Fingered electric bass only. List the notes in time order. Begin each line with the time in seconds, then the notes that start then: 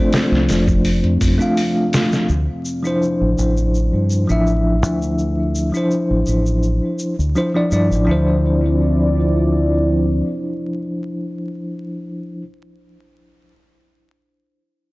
0.32 C2
0.49 F1
1.04 F2
1.21 F2
2.30 D2
3.21 A1
3.38 A1
3.93 G2
4.30 A1
4.83 D2
6.11 A1
6.28 A1
7.19 D2
7.72 G2
7.91 A1
8.08 D2